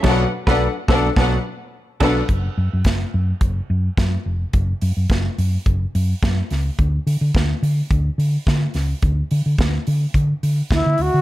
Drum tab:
CC |x-------------x-|----------------|----------------|----------------|
HH |----------------|x---x---x---x---|x-o-x-o-x-o-x-o-|x-o-x-o-x-o-x-o-|
SD |o--o--o-o-----o-|----o-------o---|----o-------o-o-|----o-------o-o-|
BD |o--o--o-o-----o-|o---o---o---o---|o---o---o---o---|o---o---o---o---|

CC |----------------|
HH |x-o-x-o-x-o-x-o-|
SD |----o-------o---|
BD |o---o---o---o---|